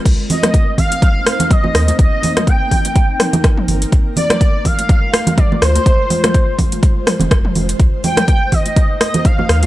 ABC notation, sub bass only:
X:1
M:4/4
L:1/16
Q:"Swing 16ths" 1/4=124
K:Cm
V:1 name="Sub bass" clef=bass
C,, z12 z E,, z | C,, z12 z G,,, z | B,,, z12 z D,, z | B,,, z8 z2 F,,, F,,,3 z |
C,, z12 z E,, z |]